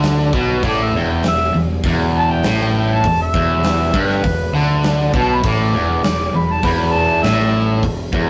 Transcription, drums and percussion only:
0.03 snare, open hi-hat
0.33 kick
0.63 kick, open hi-hat
1.23 snare, open hi-hat
1.84 kick, open hi-hat
2.43 snare, open hi-hat
3.04 kick, open hi-hat
3.34 kick
3.64 snare, open hi-hat
3.94 kick
4.10 snare
4.24 kick, open hi-hat
4.83 snare, open hi-hat
5.14 kick
5.44 kick, open hi-hat
6.03 snare, open hi-hat
6.63 kick, open hi-hat
7.23 snare, open hi-hat
7.83 kick, open hi-hat
8.13 kick

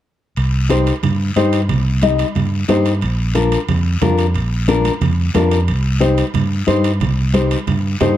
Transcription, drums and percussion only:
0.36 high timbale, long guiro
0.70 high conga, high timbale, short guiro
0.86 high timbale, short guiro
1.03 low conga, high timbale, long guiro
1.36 high conga, high timbale, short guiro
1.52 high timbale, short guiro
1.69 low conga, high timbale, long guiro
2.02 high conga, high timbale, short guiro
2.19 high timbale, short guiro
2.35 low conga, high timbale, long guiro
2.68 high conga, high timbale, low timbale, short guiro
2.85 high timbale, short guiro
3.01 high timbale, long guiro
3.35 high conga, high timbale, short guiro
3.52 high timbale, short guiro
3.69 low conga, high timbale, long guiro
4.02 high conga, low conga, high timbale, low timbale, short guiro
4.18 high timbale, short guiro
4.34 high timbale, long guiro
4.68 high conga, high timbale, short guiro
4.84 high conga, high timbale, short guiro
5.01 low conga, high timbale, long guiro
5.34 high conga, high timbale, low timbale, short guiro
5.51 high timbale, short guiro
5.68 high timbale, long guiro
6.01 high conga, high timbale, short guiro
6.17 high timbale, short guiro
6.34 low conga, high timbale, long guiro
6.67 high conga, high timbale, short guiro
6.84 high timbale, short guiro
7.00 low conga, high timbale, long guiro
7.34 high conga, high timbale, short guiro
7.51 high timbale, short guiro
7.67 low conga, high timbale, long guiro
8.01 high conga, low conga, high timbale, low timbale, short guiro

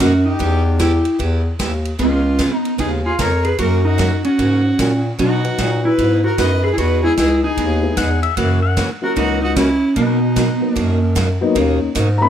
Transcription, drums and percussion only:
0.00 kick, snare, hi-hat pedal, ride
0.40 kick, ride
0.79 kick, snare, hi-hat pedal, ride
1.05 ride
1.20 kick, ride
1.59 kick, snare, hi-hat pedal, ride
1.85 ride
1.99 kick, ride
2.39 kick, snare, hi-hat pedal, ride
2.65 ride
2.79 kick, ride
3.19 kick, snare, hi-hat pedal, ride
3.45 ride
3.58 kick, ride
3.99 kick, snare, hi-hat pedal, ride
4.24 ride
4.39 kick, ride
4.79 kick, snare, hi-hat pedal, ride
5.19 kick, ride
5.44 ride
5.58 kick, snare, hi-hat pedal, ride
5.98 kick, ride
6.38 kick, snare, hi-hat pedal, ride
6.78 kick, ride
7.17 kick, snare, hi-hat pedal, ride
7.57 kick, ride
7.97 kick, snare, hi-hat pedal, ride
8.23 ride
8.37 kick, ride
8.77 kick, snare, hi-hat pedal, ride
9.16 kick, ride
9.56 kick, snare, hi-hat pedal, ride
9.96 kick, ride
10.36 kick, snare, hi-hat pedal, ride
10.76 kick, ride
11.16 kick, snare, hi-hat pedal, ride
11.56 kick, ride
11.95 kick, hi-hat pedal, ride

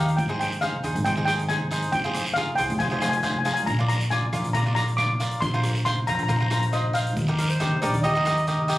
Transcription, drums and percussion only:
0.08 closed hi-hat
0.18 kick, closed hi-hat, long guiro
0.41 cross-stick, closed hi-hat
0.52 closed hi-hat
0.62 kick, closed hi-hat, short guiro
0.84 closed hi-hat
0.96 closed hi-hat
1.05 kick, closed hi-hat, long guiro
1.27 cross-stick, closed hi-hat, short guiro
1.39 closed hi-hat
1.48 kick, closed hi-hat, short guiro
1.71 closed hi-hat, short guiro
1.82 closed hi-hat
1.93 kick, closed hi-hat, long guiro
2.14 cross-stick, closed hi-hat
2.26 closed hi-hat
2.36 kick, closed hi-hat, short guiro
2.58 closed hi-hat
2.70 closed hi-hat
2.80 kick, closed hi-hat, long guiro
3.02 cross-stick, closed hi-hat, short guiro
3.13 closed hi-hat
3.23 kick, closed hi-hat, short guiro
3.45 closed hi-hat, short guiro
3.57 closed hi-hat
3.67 kick, closed hi-hat, long guiro
3.89 cross-stick, closed hi-hat
4.01 closed hi-hat
4.11 kick, closed hi-hat, short guiro
4.33 cross-stick, closed hi-hat
4.44 closed hi-hat
4.54 kick, closed hi-hat, long guiro
4.76 cross-stick, closed hi-hat, short guiro
4.88 closed hi-hat
4.98 kick, cross-stick, closed hi-hat, short guiro
5.20 closed hi-hat, short guiro
5.31 closed hi-hat
5.42 kick, closed hi-hat, long guiro
5.64 cross-stick, closed hi-hat
5.75 closed hi-hat
5.86 kick, closed hi-hat, short guiro
6.07 closed hi-hat
6.19 closed hi-hat
6.29 kick, closed hi-hat, long guiro
6.51 cross-stick, closed hi-hat, short guiro
6.63 closed hi-hat
6.73 kick, closed hi-hat, short guiro
6.95 closed hi-hat, short guiro
7.07 closed hi-hat
7.17 kick, closed hi-hat, long guiro
7.38 cross-stick, closed hi-hat
7.50 closed hi-hat
7.60 kick, closed hi-hat, short guiro
7.82 closed hi-hat
7.94 closed hi-hat
8.04 kick, closed hi-hat, long guiro
8.26 cross-stick, closed hi-hat, short guiro
8.37 closed hi-hat
8.47 kick, closed hi-hat, short guiro
8.69 closed hi-hat, short guiro

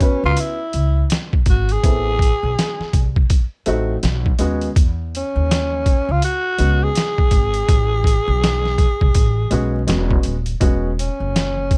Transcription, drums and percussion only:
0.00 kick, closed hi-hat
0.37 closed hi-hat
0.73 closed hi-hat
1.10 snare, closed hi-hat
1.33 kick
1.46 kick, closed hi-hat
1.69 closed hi-hat
1.84 kick, closed hi-hat
2.19 kick, closed hi-hat
2.59 snare, closed hi-hat
2.81 snare
2.93 kick, closed hi-hat
3.16 kick
3.30 kick, closed hi-hat
3.66 closed hi-hat
4.03 snare, closed hi-hat
4.26 kick
4.39 closed hi-hat
4.61 closed hi-hat
4.76 kick, closed hi-hat
5.15 closed hi-hat
5.51 snare, closed hi-hat
5.86 kick, closed hi-hat
6.22 closed hi-hat
6.58 closed hi-hat
6.95 snare, closed hi-hat
7.18 kick
7.31 kick, closed hi-hat
7.54 closed hi-hat
7.69 kick, closed hi-hat
8.04 kick, closed hi-hat
8.44 snare, closed hi-hat
8.66 snare
8.78 kick, closed hi-hat
9.01 kick
9.14 kick, closed hi-hat
9.51 closed hi-hat
9.88 snare, closed hi-hat
10.11 kick
10.23 closed hi-hat
10.46 closed hi-hat
10.61 kick, closed hi-hat
10.99 closed hi-hat
11.36 snare, closed hi-hat
11.71 kick, closed hi-hat

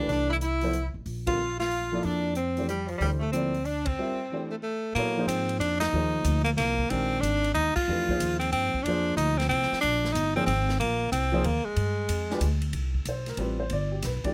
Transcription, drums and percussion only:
0.09 open hi-hat
0.41 closed hi-hat
0.61 open hi-hat
0.73 closed hi-hat
1.06 open hi-hat
1.27 kick, ride
1.60 snare, open hi-hat
1.71 open hi-hat
2.03 open hi-hat
2.35 closed hi-hat
2.57 open hi-hat
2.69 closed hi-hat
2.88 open hi-hat
3.01 open hi-hat
3.33 closed hi-hat
3.54 open hi-hat
3.65 open hi-hat
3.86 kick, ride
4.96 ride
5.29 hi-hat pedal, ride
5.49 ride
5.61 ride
5.81 snare, ride
6.24 hi-hat pedal, ride
6.46 ride
6.58 snare, ride
6.79 kick
6.90 ride
7.23 hi-hat pedal, ride
7.44 ride
7.55 ride
7.76 kick, crash
8.09 kick
8.20 hi-hat pedal, ride
8.41 ride
8.53 ride
8.74 kick
8.86 ride
9.18 hi-hat pedal, ride
9.40 snare, ride
9.51 ride
9.62 snare
9.73 snare
9.83 ride
10.05 snare
10.15 hi-hat pedal, ride
10.48 ride
10.69 snare
10.81 ride
11.13 hi-hat pedal, ride
11.44 ride
11.76 ride
12.09 hi-hat pedal, ride
12.30 snare
12.41 hi-hat pedal, ride
12.62 ride
12.73 ride
12.95 kick
13.05 hi-hat pedal, ride
13.26 snare, ride
13.37 ride
13.70 ride
14.02 snare, hi-hat pedal, ride
14.24 kick, ride

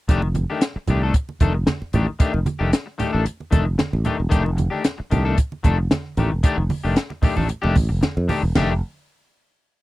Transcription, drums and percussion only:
0.09 kick, closed hi-hat
0.22 muted conga
0.35 closed hi-hat, high conga
0.61 snare, closed hi-hat
0.87 closed hi-hat, low conga
1.14 kick, closed hi-hat
1.29 muted conga
1.40 kick, closed hi-hat, high conga
1.67 snare, closed hi-hat, muted conga, high conga
1.82 muted conga
1.93 closed hi-hat, low conga
2.20 kick, closed hi-hat
2.34 muted conga
2.46 closed hi-hat, high conga
2.73 snare, closed hi-hat
3.00 closed hi-hat, low conga
3.26 closed hi-hat, muted conga
3.40 muted conga
3.52 kick, closed hi-hat, high conga
3.79 snare, closed hi-hat, muted conga, high conga
3.93 muted conga
4.05 closed hi-hat, low conga
4.31 kick, closed hi-hat
4.46 muted conga
4.58 closed hi-hat, high conga
4.84 snare, closed hi-hat, muted conga
5.11 closed hi-hat, low conga
5.38 kick, closed hi-hat, muted conga
5.52 muted conga
5.64 kick, closed hi-hat, high conga
5.91 snare, closed hi-hat, muted conga, high conga
6.17 closed hi-hat, low conga
6.43 kick, closed hi-hat
6.70 open hi-hat, high conga
6.96 snare, closed hi-hat
7.10 muted conga
7.22 kick, open hi-hat, low conga
7.37 low conga
7.49 closed hi-hat, muted conga
7.64 muted conga
7.76 kick, open hi-hat, high conga
8.03 snare, closed hi-hat, muted conga, high conga
8.17 muted conga
8.29 open hi-hat, high conga, low conga
8.55 snare, crash, high conga

